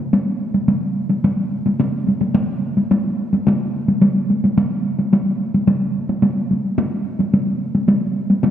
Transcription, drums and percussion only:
0, 0, Header, 1, 2, 480
1, 0, Start_track
1, 0, Tempo, 554017
1, 1556, Time_signature, 4, 2, 24, 8
1, 7370, End_track
2, 0, Start_track
2, 0, Title_t, "Taiko and cinematic ensemble drums"
2, 113, Note_on_c, 9, 48, 65
2, 200, Note_off_c, 9, 48, 0
2, 470, Note_on_c, 9, 48, 50
2, 556, Note_off_c, 9, 48, 0
2, 590, Note_on_c, 9, 48, 62
2, 676, Note_off_c, 9, 48, 0
2, 954, Note_on_c, 9, 48, 57
2, 1040, Note_off_c, 9, 48, 0
2, 1078, Note_on_c, 9, 48, 68
2, 1164, Note_off_c, 9, 48, 0
2, 1436, Note_on_c, 9, 48, 57
2, 1523, Note_off_c, 9, 48, 0
2, 1556, Note_on_c, 9, 48, 76
2, 1643, Note_off_c, 9, 48, 0
2, 1794, Note_on_c, 9, 48, 50
2, 1880, Note_off_c, 9, 48, 0
2, 1915, Note_on_c, 9, 48, 59
2, 2002, Note_off_c, 9, 48, 0
2, 2031, Note_on_c, 9, 48, 78
2, 2118, Note_off_c, 9, 48, 0
2, 2399, Note_on_c, 9, 48, 55
2, 2486, Note_off_c, 9, 48, 0
2, 2521, Note_on_c, 9, 48, 69
2, 2608, Note_off_c, 9, 48, 0
2, 2883, Note_on_c, 9, 48, 59
2, 2970, Note_off_c, 9, 48, 0
2, 3005, Note_on_c, 9, 48, 76
2, 3091, Note_off_c, 9, 48, 0
2, 3364, Note_on_c, 9, 48, 58
2, 3451, Note_off_c, 9, 48, 0
2, 3483, Note_on_c, 9, 48, 68
2, 3570, Note_off_c, 9, 48, 0
2, 3726, Note_on_c, 9, 48, 50
2, 3813, Note_off_c, 9, 48, 0
2, 3846, Note_on_c, 9, 48, 57
2, 3933, Note_off_c, 9, 48, 0
2, 3965, Note_on_c, 9, 48, 77
2, 4051, Note_off_c, 9, 48, 0
2, 4320, Note_on_c, 9, 48, 53
2, 4407, Note_off_c, 9, 48, 0
2, 4443, Note_on_c, 9, 48, 67
2, 4529, Note_off_c, 9, 48, 0
2, 4803, Note_on_c, 9, 48, 53
2, 4890, Note_off_c, 9, 48, 0
2, 4916, Note_on_c, 9, 48, 69
2, 5003, Note_off_c, 9, 48, 0
2, 5281, Note_on_c, 9, 48, 54
2, 5367, Note_off_c, 9, 48, 0
2, 5399, Note_on_c, 9, 48, 63
2, 5485, Note_off_c, 9, 48, 0
2, 5639, Note_on_c, 9, 48, 49
2, 5726, Note_off_c, 9, 48, 0
2, 5874, Note_on_c, 9, 48, 75
2, 5961, Note_off_c, 9, 48, 0
2, 6230, Note_on_c, 9, 48, 54
2, 6317, Note_off_c, 9, 48, 0
2, 6356, Note_on_c, 9, 48, 67
2, 6443, Note_off_c, 9, 48, 0
2, 6712, Note_on_c, 9, 48, 53
2, 6799, Note_off_c, 9, 48, 0
2, 6832, Note_on_c, 9, 48, 68
2, 6918, Note_off_c, 9, 48, 0
2, 7190, Note_on_c, 9, 48, 59
2, 7277, Note_off_c, 9, 48, 0
2, 7305, Note_on_c, 9, 48, 73
2, 7370, Note_off_c, 9, 48, 0
2, 7370, End_track
0, 0, End_of_file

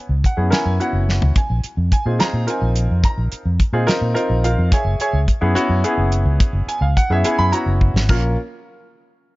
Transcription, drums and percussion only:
0, 0, Header, 1, 2, 480
1, 0, Start_track
1, 0, Key_signature, -5, "minor"
1, 0, Tempo, 560748
1, 1164, Time_signature, 6, 3, 24, 8
1, 8012, End_track
2, 0, Start_track
2, 0, Title_t, "Drums"
2, 208, Note_on_c, 9, 36, 71
2, 214, Note_on_c, 9, 42, 53
2, 294, Note_off_c, 9, 36, 0
2, 300, Note_off_c, 9, 42, 0
2, 445, Note_on_c, 9, 42, 75
2, 454, Note_on_c, 9, 38, 104
2, 531, Note_off_c, 9, 42, 0
2, 539, Note_off_c, 9, 38, 0
2, 689, Note_on_c, 9, 42, 55
2, 775, Note_off_c, 9, 42, 0
2, 934, Note_on_c, 9, 38, 60
2, 1020, Note_off_c, 9, 38, 0
2, 1045, Note_on_c, 9, 43, 78
2, 1130, Note_off_c, 9, 43, 0
2, 1161, Note_on_c, 9, 42, 77
2, 1163, Note_on_c, 9, 36, 108
2, 1247, Note_off_c, 9, 42, 0
2, 1249, Note_off_c, 9, 36, 0
2, 1400, Note_on_c, 9, 42, 58
2, 1486, Note_off_c, 9, 42, 0
2, 1642, Note_on_c, 9, 36, 75
2, 1645, Note_on_c, 9, 42, 59
2, 1728, Note_off_c, 9, 36, 0
2, 1731, Note_off_c, 9, 42, 0
2, 1881, Note_on_c, 9, 42, 80
2, 1890, Note_on_c, 9, 38, 103
2, 1967, Note_off_c, 9, 42, 0
2, 1976, Note_off_c, 9, 38, 0
2, 2120, Note_on_c, 9, 42, 64
2, 2206, Note_off_c, 9, 42, 0
2, 2359, Note_on_c, 9, 42, 64
2, 2444, Note_off_c, 9, 42, 0
2, 2598, Note_on_c, 9, 42, 85
2, 2599, Note_on_c, 9, 36, 116
2, 2684, Note_off_c, 9, 42, 0
2, 2685, Note_off_c, 9, 36, 0
2, 2839, Note_on_c, 9, 42, 65
2, 2925, Note_off_c, 9, 42, 0
2, 3079, Note_on_c, 9, 36, 75
2, 3079, Note_on_c, 9, 42, 63
2, 3165, Note_off_c, 9, 36, 0
2, 3165, Note_off_c, 9, 42, 0
2, 3322, Note_on_c, 9, 42, 85
2, 3331, Note_on_c, 9, 38, 97
2, 3408, Note_off_c, 9, 42, 0
2, 3416, Note_off_c, 9, 38, 0
2, 3564, Note_on_c, 9, 42, 61
2, 3649, Note_off_c, 9, 42, 0
2, 3803, Note_on_c, 9, 42, 63
2, 3889, Note_off_c, 9, 42, 0
2, 4040, Note_on_c, 9, 36, 110
2, 4041, Note_on_c, 9, 42, 84
2, 4125, Note_off_c, 9, 36, 0
2, 4126, Note_off_c, 9, 42, 0
2, 4279, Note_on_c, 9, 42, 63
2, 4365, Note_off_c, 9, 42, 0
2, 4520, Note_on_c, 9, 36, 74
2, 4521, Note_on_c, 9, 42, 58
2, 4606, Note_off_c, 9, 36, 0
2, 4607, Note_off_c, 9, 42, 0
2, 4762, Note_on_c, 9, 42, 74
2, 4847, Note_off_c, 9, 42, 0
2, 5000, Note_on_c, 9, 42, 61
2, 5086, Note_off_c, 9, 42, 0
2, 5238, Note_on_c, 9, 42, 57
2, 5323, Note_off_c, 9, 42, 0
2, 5480, Note_on_c, 9, 36, 113
2, 5480, Note_on_c, 9, 42, 85
2, 5566, Note_off_c, 9, 36, 0
2, 5566, Note_off_c, 9, 42, 0
2, 5724, Note_on_c, 9, 42, 59
2, 5809, Note_off_c, 9, 42, 0
2, 5965, Note_on_c, 9, 36, 77
2, 5971, Note_on_c, 9, 42, 61
2, 6051, Note_off_c, 9, 36, 0
2, 6056, Note_off_c, 9, 42, 0
2, 6201, Note_on_c, 9, 42, 81
2, 6286, Note_off_c, 9, 42, 0
2, 6444, Note_on_c, 9, 42, 62
2, 6529, Note_off_c, 9, 42, 0
2, 6687, Note_on_c, 9, 36, 66
2, 6772, Note_off_c, 9, 36, 0
2, 6816, Note_on_c, 9, 38, 84
2, 6901, Note_off_c, 9, 38, 0
2, 6923, Note_on_c, 9, 49, 88
2, 6928, Note_on_c, 9, 36, 106
2, 7008, Note_off_c, 9, 49, 0
2, 7013, Note_off_c, 9, 36, 0
2, 8012, End_track
0, 0, End_of_file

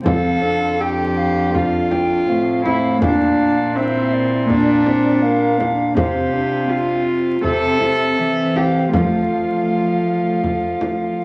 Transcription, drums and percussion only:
0, 0, Header, 1, 2, 480
1, 0, Start_track
1, 0, Key_signature, -1, "major"
1, 0, Tempo, 738007
1, 38, Time_signature, 4, 2, 24, 8
1, 4838, Tempo, 749064
1, 7277, End_track
2, 0, Start_track
2, 0, Title_t, "Frame drum"
2, 37, Note_on_c, 9, 64, 81
2, 102, Note_off_c, 9, 64, 0
2, 1005, Note_on_c, 9, 64, 47
2, 1070, Note_off_c, 9, 64, 0
2, 1246, Note_on_c, 9, 64, 47
2, 1311, Note_off_c, 9, 64, 0
2, 1728, Note_on_c, 9, 64, 48
2, 1793, Note_off_c, 9, 64, 0
2, 1963, Note_on_c, 9, 64, 73
2, 2028, Note_off_c, 9, 64, 0
2, 2924, Note_on_c, 9, 64, 47
2, 2989, Note_off_c, 9, 64, 0
2, 3163, Note_on_c, 9, 64, 49
2, 3228, Note_off_c, 9, 64, 0
2, 3645, Note_on_c, 9, 64, 50
2, 3710, Note_off_c, 9, 64, 0
2, 3881, Note_on_c, 9, 64, 74
2, 3946, Note_off_c, 9, 64, 0
2, 4839, Note_on_c, 9, 64, 46
2, 4903, Note_off_c, 9, 64, 0
2, 5074, Note_on_c, 9, 64, 45
2, 5138, Note_off_c, 9, 64, 0
2, 5556, Note_on_c, 9, 64, 45
2, 5620, Note_off_c, 9, 64, 0
2, 5796, Note_on_c, 9, 64, 74
2, 5860, Note_off_c, 9, 64, 0
2, 6758, Note_on_c, 9, 64, 47
2, 6822, Note_off_c, 9, 64, 0
2, 6999, Note_on_c, 9, 64, 44
2, 7064, Note_off_c, 9, 64, 0
2, 7277, End_track
0, 0, End_of_file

